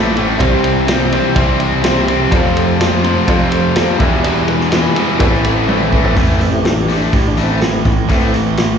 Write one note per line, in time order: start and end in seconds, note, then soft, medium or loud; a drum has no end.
0.00 0.24 A1 loud
0.00 0.14 A2 medium
0.00 0.37 A2 medium
0.00 0.15 E3 medium
0.00 0.38 E3 medium
0.00 0.15 A3 loud
0.00 0.38 A3 medium
0.00 0.38 C4 medium
0.00 0.41 C4 medium
0.00 0.10 E4 medium
0.00 0.37 E4 medium
0.00 0.39 E4 medium
0.00 0.11 A4 medium
0.00 0.38 A4 medium
0.00 0.11 C5 loud
0.00 0.38 E5 medium
0.14 0.38 A2 medium
0.14 0.39 E3 medium
0.14 0.39 A3 medium
0.14 0.34 E4 medium
0.14 0.34 A4 medium
0.14 0.34 C5 medium
0.14 ride medium
0.38 1.19 C2 loud
0.38 1.33 C3 loud
0.38 0.87 C3 loud
0.38 1.34 E3 loud
0.38 1.35 G3 medium
0.38 0.88 G3 medium
0.38 2.29 C4 medium
0.38 0.89 C4 loud
0.38 1.35 C4 loud
0.38 0.58 E4 loud
0.38 2.29 E4 medium
0.38 0.58 G4 loud
0.38 2.29 G4 medium
0.38 0.58 C5 loud
0.38 2.29 E5 medium
0.38 kick loud
0.38 ride loud
0.38 cowbell loud
0.42 1.36 E4 medium
0.62 0.82 E4 medium
0.62 0.82 G4 medium
0.62 0.83 C5 medium
0.62 ride medium
0.87 1.11 C3 medium
0.87 1.12 G3 medium
0.87 1.12 C4 medium
0.87 1.06 E4 medium
0.87 1.07 G4 medium
0.87 1.07 C5 loud
0.87 snare loud
0.87 ride loud
0.87 cowbell medium
1.11 1.35 C3 medium
1.11 1.35 G3 medium
1.11 1.36 C4 medium
1.11 1.31 E4 medium
1.11 1.31 G4 medium
1.11 1.31 C5 medium
1.11 ride medium
1.34 2.32 C2 medium
1.34 2.29 C3 medium
1.34 1.83 C3 loud
1.34 2.29 E3 medium
1.34 2.31 G3 medium
1.34 1.83 G3 loud
1.34 2.31 C4 medium
1.34 1.84 C4 loud
1.34 1.54 E4 loud
1.34 1.54 G4 loud
1.34 1.55 C5 loud
1.34 kick loud
1.34 ride loud
1.34 cowbell loud
1.38 2.31 E4 medium
1.58 1.78 E4 medium
1.58 1.78 G4 medium
1.58 1.78 C5 medium
1.58 ride medium
1.82 2.07 C3 medium
1.82 2.07 G3 medium
1.82 2.08 C4 loud
1.82 2.02 E4 medium
1.82 2.02 G4 medium
1.82 2.03 C5 loud
1.82 snare loud
1.82 ride loud
1.82 cowbell medium
2.07 2.30 C3 medium
2.07 2.31 G3 medium
2.07 2.31 C4 loud
2.07 2.27 E4 medium
2.07 2.27 G4 medium
2.07 2.27 C5 medium
2.07 ride medium
2.30 2.78 F2 loud
2.30 3.11 F2 loud
2.30 2.79 C3 loud
2.30 3.25 F3 medium
2.30 2.79 F3 loud
2.30 3.26 A3 medium
2.30 3.98 C4 medium
2.30 3.27 C4 loud
2.30 2.50 F4 loud
2.30 3.97 F4 medium
2.30 3.97 A4 medium
2.30 2.51 A4 loud
2.30 2.51 C5 loud
2.30 3.97 F5 medium
2.30 kick loud
2.30 ride loud
2.30 cowbell loud
2.34 3.27 F4 loud
2.55 2.75 F4 medium
2.55 2.75 A4 medium
2.55 2.75 C5 medium
2.55 ride medium
2.78 3.02 F2 medium
2.78 3.03 C3 medium
2.78 3.04 F3 medium
2.78 2.98 F4 medium
2.78 2.98 A4 medium
2.78 2.99 C5 medium
2.78 snare loud
2.78 ride loud
2.78 cowbell medium
3.03 3.27 F2 medium
3.03 3.27 C3 medium
3.03 3.28 F3 medium
3.03 3.23 F4 medium
3.03 3.23 A4 medium
3.03 3.23 C5 medium
3.03 ride medium
3.26 3.75 F2 medium
3.26 3.88 F2 loud
3.26 3.75 C3 loud
3.26 3.98 F3 medium
3.26 3.76 F3 loud
3.26 3.98 A3 medium
3.26 3.99 C4 medium
3.26 3.46 F4 loud
3.26 3.99 F4 medium
3.26 3.47 A4 loud
3.26 3.47 C5 loud
3.26 kick loud
3.26 ride medium
3.26 cowbell loud
3.51 3.70 F4 medium
3.51 3.71 A4 medium
3.51 3.71 C5 loud
3.51 ride medium
3.75 3.99 F2 medium
3.75 3.99 C3 medium
3.75 3.99 F3 medium
3.75 3.95 F4 medium
3.75 3.95 A4 medium
3.75 3.95 C5 loud
3.75 snare loud
3.75 ride loud
3.75 cowbell medium
3.98 4.23 E2 loud
3.98 4.79 E2 loud
3.98 4.24 B2 loud
3.98 4.94 E3 medium
3.98 4.25 E3 loud
3.98 4.95 G3 medium
3.98 5.18 B3 medium
3.98 4.95 B3 medium
3.98 5.18 E4 medium
3.98 4.38 E4 medium
3.98 4.93 E4 loud
3.98 5.18 G4 medium
3.98 4.38 G4 medium
3.98 4.38 B4 loud
3.98 5.18 E5 medium
3.98 kick loud
3.98 ride medium
4.24 4.71 E2 medium
4.24 4.72 B2 medium
4.24 4.72 E3 loud
4.24 ride loud
4.24 cowbell loud
4.47 4.67 E4 medium
4.47 4.67 G4 medium
4.47 4.67 B4 medium
4.47 ride medium
4.60 snare soft
4.71 4.95 E2 medium
4.71 4.96 B2 medium
4.71 4.96 E3 medium
4.71 4.91 E4 medium
4.71 4.91 G4 medium
4.71 4.91 B4 medium
4.71 snare loud
4.71 ride medium
4.71 cowbell medium
4.95 5.19 E2 medium
4.95 5.19 B2 medium
4.95 5.19 E3 medium
4.95 5.19 G3 medium
4.95 5.19 B3 medium
4.95 5.18 E4 medium
4.95 5.15 E4 medium
4.95 5.15 G4 medium
4.95 5.15 B4 medium
4.95 ride medium
5.18 6.00 A1 medium
5.18 6.14 A2 medium
5.18 5.67 A2 medium
5.18 6.15 E3 medium
5.18 5.68 E3 medium
5.18 6.15 A3 medium
5.18 5.69 A3 loud
5.18 5.38 C4 loud
5.18 6.16 C4 medium
5.18 6.16 C4 loud
5.18 5.39 A4 loud
5.18 6.16 A4 medium
5.18 5.39 B4 loud
5.18 6.16 B4 medium
5.18 6.16 E5 medium
5.18 kick loud
5.18 ride loud
5.18 cowbell loud
5.22 6.16 E4 loud
5.43 5.63 C4 medium
5.43 5.63 A4 medium
5.43 5.63 B4 medium
5.43 ride medium
5.67 5.91 A2 medium
5.67 5.92 E3 medium
5.67 5.93 A3 loud
5.67 5.87 C4 medium
5.67 5.87 A4 medium
5.67 5.87 B4 medium
5.67 high tom medium
5.67 cowbell medium
5.80 mid tom medium
5.91 6.15 A2 medium
5.91 6.15 E3 medium
5.91 6.16 A3 loud
5.91 6.11 C4 medium
5.91 6.11 A4 medium
5.91 6.11 B4 medium
5.91 kick medium
6.05 floor tom medium
6.16 6.96 A1 loud
6.16 6.39 A2 medium
6.16 6.39 E3 medium
6.16 6.40 A3 medium
6.16 kick loud
6.16 open hi-hat medium
6.40 6.62 A2 medium
6.40 6.72 E3 medium
6.40 6.62 E3 medium
6.40 6.72 A3 soft
6.40 6.72 C4 medium
6.40 open hi-hat medium
6.49 6.64 G4 medium
6.63 6.86 A2 medium
6.63 6.87 E3 medium
6.63 6.79 D4 medium
6.63 snare loud
6.63 open hi-hat medium
6.77 6.80 F#4 medium
6.81 6.96 G4 loud
6.88 7.11 A2 medium
6.88 7.12 E3 medium
6.88 7.12 A3 loud
6.88 open hi-hat medium
6.96 7.12 D4 medium
7.12 7.73 A1 medium
7.12 7.34 A2 medium
7.12 7.35 E3 medium
7.12 8.09 A3 medium
7.12 7.28 G4 medium
7.12 kick loud
7.12 open hi-hat medium
7.28 7.44 D4 medium
7.37 7.60 A2 medium
7.37 7.60 E3 medium
7.37 7.60 A3 medium
7.37 open hi-hat medium
7.43 7.60 C4 medium
7.43 7.91 E4 medium
7.60 7.83 A2 medium
7.60 7.82 E3 soft
7.60 7.83 E3 medium
7.60 7.82 A3 soft
7.60 7.82 C4 medium
7.60 snare loud
7.60 open hi-hat medium
7.85 8.05 A1 loud
7.85 8.07 A2 medium
7.85 8.07 E3 medium
7.85 kick medium
7.85 open hi-hat medium
8.08 8.78 A1 loud
8.08 8.31 A2 medium
8.08 8.41 E3 medium
8.08 8.32 E3 medium
8.08 8.41 A3 soft
8.08 8.32 A3 loud
8.08 8.41 C4 medium
8.08 kick loud
8.08 open hi-hat medium
8.34 8.55 A2 medium
8.34 8.55 E3 medium
8.34 open hi-hat medium
8.57 8.78 A2 medium
8.57 8.78 E3 medium
8.57 snare loud
8.57 open hi-hat medium